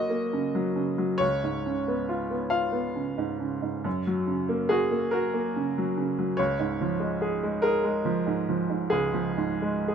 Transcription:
Already playing: F#2 C#3 F#3 A#3 F#4 C#5 D#5
0.10 A#3
0.33 C#3
0.55 F#3
0.76 C#3
0.98 F#3
1.18 C#2 C#5
1.44 G#2
1.66 C#3
1.88 B3
2.09 F4
2.31 B3
2.50 F4 F5
2.72 B3
2.96 C#3
3.18 G#2
3.40 C#3
3.62 G#2
3.84 F#2
4.07 F#3
4.27 C#3
4.49 A#3
4.69 F#4 G#4
4.91 A#3
5.11 F#4 A#4
5.34 A#3
5.56 C#3
5.78 F#3
5.97 C#3
6.19 F#3
6.37 C#2 C#5
6.59 G#2
6.81 F3
7.00 G#3
7.22 G#4
7.43 G#3
7.62 G#4 A#4
7.84 G#3
8.05 F3
8.27 G#2
8.49 F3
8.70 G#2
8.90 C#2 G#4
9.14 F3
9.37 G#2
9.62 G#3
9.88 G#4

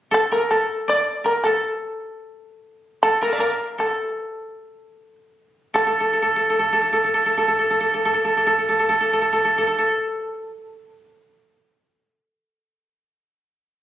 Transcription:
0.11 A4
0.32 A#4
0.51 A4
0.88 D5
1.24 A#4
1.44 A4
3.03 A4
3.21 A#4 A#5
3.27 A5
3.32 D5 E5 F5
3.38 A#4 D5
3.78 A4
5.74 A4
5.87 A4
6.00 A4
6.13 A4
6.22 A4
6.36 A4
6.50 A4
6.59 A4
6.73 A4
6.82 A4
6.93 A4
7.04 A4
7.14 A4
7.26 A4
7.38 A4
7.48 A4
7.59 A4
7.70 A4
7.80 A4
7.94 A4
8.05 A4
8.14 A4
8.25 A4
8.37 A4
8.47 A4
8.59 A4
8.69 A4
8.79 A4
8.89 A4
9.01 A4
9.13 A4
9.22 A4
9.33 A4
9.45 A4
9.58 A4
9.67 A4
9.78 A4

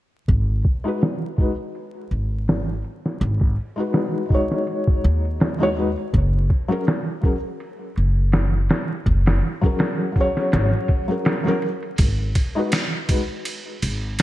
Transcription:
0.28 G#1, kick, ride
0.64 kick, ride
0.84 G#3 D#4 F#4 B4
1.02 snare, ride
1.36 G#3 D#4 F#4, kick, ride
1.41 B4
1.75 ride
2.11 G#1, ride
2.48 snare, ride
2.84 ride
3.06 snare
3.20 G#1, ride
3.41 kick
3.56 open hi-hat
3.76 G#3 D#4 F#4
3.80 B4
3.93 snare, ride
4.26 G#3 D#4
4.30 F#4, kick, ride
4.34 C#5
4.51 snare
4.67 ride
4.88 kick
5.04 D#2, ride
5.25 ride
5.40 snare, ride
5.59 G#3 D#4 F#4, snare
5.63 C#5
5.75 G#3 D#4 F#4, ride
5.79 B4
5.97 ride
6.13 F#1, kick, ride
6.50 kick, ride
6.68 F#3 C#4 G#4 A#4
6.87 snare, ride
7.21 F#3 C#4 G#4 A#4, kick, ride
7.60 ride
7.96 F#1, ride
8.32 snare, ride
8.69 snare, ride
9.06 F#1, kick, ride
9.26 snare, ride
9.61 F#3 C#4 G#4, kick, ride
9.66 A#4
9.79 snare, ride
10.12 F#3 C#4, kick, ride
10.18 G#4 C#5
10.37 snare
10.52 G#1, snare, ride
10.88 kick, ride
11.08 F#3 C#4 G#4
11.12 A#4
11.25 snare, ride
11.44 F#3 C#4 G#4, snare
11.48 A#4
11.62 ride
11.83 ride
11.98 G#1, kick, ride
12.35 kick, ride
12.55 G#3 D#4 F#4 B4
12.72 snare, ride
13.06 G#3 D#4 F#4 B4, kick, ride
13.45 ride
13.82 G#1, ride
14.19 ride

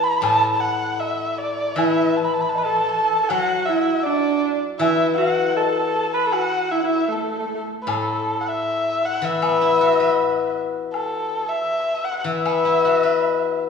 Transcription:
Already playing: E3
0.04 B5
0.22 A2 A5, high woodblock
0.56 A5
0.60 F#5
1.00 E5, low woodblock
1.38 D5
1.76 E3 E4 E5, high woodblock
2.17 A5
2.25 B5
2.34 A5
2.41 B5
2.49 A5
2.55 B4 B5, low woodblock
2.63 A4 A5
2.92 A5
3.24 A4
3.29 F#3 F#4 F#5, high woodblock
3.66 E4 E5
4.03 D4 D5, low woodblock
4.79 E3 E4 E5, high woodblock
5.17 F#4 F#5
5.57 A4 A5, low woodblock
5.64 A4
5.72 A4
5.79 A4
5.87 A4
5.95 A4
6.00 A4
6.14 B4 B5
6.27 A4
6.32 F#4 F#5, high woodblock
6.71 E4 E5
6.80 E4 F#5
6.85 E5
7.08 A3
7.12 A4
7.16 A3
7.23 A3
7.31 A3
7.39 A3
7.46 A3
7.54 A3
7.82 B4
7.87 A2 A4, high woodblock
8.42 F#5
8.49 E5
9.06 F#5
9.22 E3 E5
9.42 B3, high woodblock
9.61 E4
9.81 F#4
10.00 B4
10.94 A4, high woodblock
11.49 E5
12.05 F#5
12.19 F#5
12.24 E3 E5
12.45 B3, high woodblock
12.65 E4
12.85 F#4
13.03 B4
13.21 low woodblock

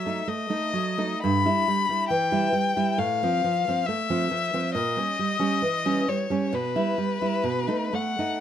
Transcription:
Already playing: F#3 E5
0.06 A3 D#4
0.27 A3 D#5
0.50 A3 D#4
0.73 F#3
0.98 A3 D#4
1.23 G2 B5
1.45 G3 E4
1.68 G3
1.89 G3 E4
2.09 E3 G5
2.32 G3 E4
2.52 G3
2.77 G3 E4
2.98 A2 F5
3.23 F3 C4
3.44 F3
3.68 F3 C4
3.87 A3 E5
4.10 F3 C4
4.31 F3
4.54 F3 C4
4.74 A#2 D#5
4.97 G3 C#4
5.19 G3
5.39 G3 C#4
5.62 E3
5.85 G3 C#4
6.08 G3 C#5
6.30 G3 C#4
6.53 B2 B4
6.76 G3 E4
6.98 G3
7.21 G3 E4
7.44 B2
7.68 A3 D#4
7.93 A3 F#5
8.19 A3 D#4

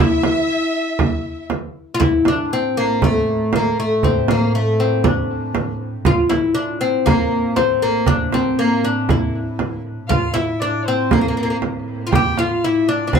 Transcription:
0.00 E4 E5
0.23 frame drum
0.99 frame drum
1.50 frame drum
1.94 F4
2.00 A2 E4, frame drum
2.25 D4, frame drum
2.53 C4
2.77 A#3
3.02 A3, frame drum
3.53 A#3, frame drum
3.80 A3
4.03 C4, frame drum
4.28 A#3, frame drum
4.55 A3
4.80 C4
5.04 D4, frame drum
5.55 frame drum
6.05 A2 F4, frame drum
6.29 E4, frame drum
6.55 D4
6.81 C4
7.06 A#3, frame drum
7.56 C4, frame drum
7.82 A#3
8.06 D4, frame drum
8.32 C4, frame drum
8.59 A#3
8.85 D4
9.09 E4, frame drum
9.59 frame drum
10.09 A2 F4 F5, frame drum
10.34 E4 E5, frame drum
10.60 D4 D5
10.85 C4 C5
11.11 A#3 A#4, frame drum
11.21 A#3
11.28 A#3
11.37 A#3
11.43 A#3
11.50 A#3
11.62 frame drum
12.07 F4
12.12 G4 G5, frame drum
12.37 F4 F5, frame drum
12.64 E4 E5
12.89 D4 D5
13.07 D4
13.13 C4 C5, frame drum

